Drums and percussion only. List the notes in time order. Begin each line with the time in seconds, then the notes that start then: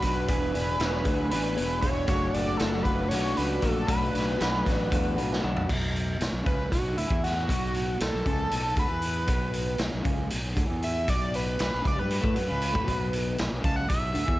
0.02 kick, closed hi-hat
0.28 kick, closed hi-hat
0.55 closed hi-hat
0.80 snare, closed hi-hat
1.05 kick, closed hi-hat
1.31 closed hi-hat
1.57 closed hi-hat
1.82 kick, closed hi-hat
2.08 kick, closed hi-hat
2.34 closed hi-hat
2.59 snare, closed hi-hat
2.85 kick, closed hi-hat
3.11 snare, closed hi-hat
3.37 closed hi-hat
3.62 kick, closed hi-hat
3.88 kick, closed hi-hat
4.15 snare, closed hi-hat
4.41 snare, closed hi-hat
4.66 kick, snare, closed hi-hat
4.92 kick, closed hi-hat
5.18 closed hi-hat
5.33 snare
5.44 mid tom
5.57 floor tom
5.69 kick, crash
5.96 closed hi-hat
6.21 snare, closed hi-hat
6.46 kick, closed hi-hat
6.72 kick, closed hi-hat
6.98 closed hi-hat
7.11 kick
7.24 snare, closed hi-hat
7.49 kick, closed hi-hat
7.75 closed hi-hat
8.00 snare, closed hi-hat
8.26 kick, closed hi-hat
8.51 closed hi-hat
8.76 kick, closed hi-hat
9.02 closed hi-hat
9.27 kick, closed hi-hat
9.53 closed hi-hat
9.78 snare, closed hi-hat
10.05 kick, closed hi-hat
10.30 closed hi-hat
10.57 kick, closed hi-hat
10.82 closed hi-hat
11.08 kick, closed hi-hat
11.34 closed hi-hat
11.59 snare, closed hi-hat
11.85 kick, closed hi-hat
12.11 closed hi-hat
12.24 kick
12.36 closed hi-hat
12.61 closed hi-hat
12.75 kick
12.88 kick, closed hi-hat
13.13 closed hi-hat
13.38 snare, closed hi-hat
13.64 kick, closed hi-hat
13.90 kick, closed hi-hat
14.15 closed hi-hat
14.28 kick